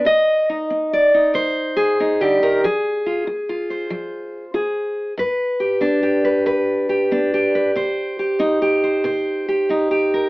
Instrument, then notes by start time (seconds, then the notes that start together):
steel-string acoustic guitar
0.05 C3 D#5
0.49 D#4
0.70 C4
0.93 D5
1.14 D#4
1.34 C3 C5
1.77 G#4
2.00 C4 D#4
2.21 D3 G4
2.43 D#3 A#4
2.64 F3 G#4
3.06 F4
3.27 F4
3.49 F4
3.70 C5
3.90 F3
4.54 F4 G#4
5.17 G2 B4
5.60 G4
5.81 B3 D4
6.03 G4
6.25 B4
6.46 G2 B4
6.89 G4
7.11 B3 D4
7.34 G4
7.55 B4
7.75 C3 C5
8.19 G4
8.39 C4 D#4
8.62 G4
8.84 C5
9.04 C3 C5
9.48 G4
9.69 C4 D#4
9.91 G4
10.14 A#4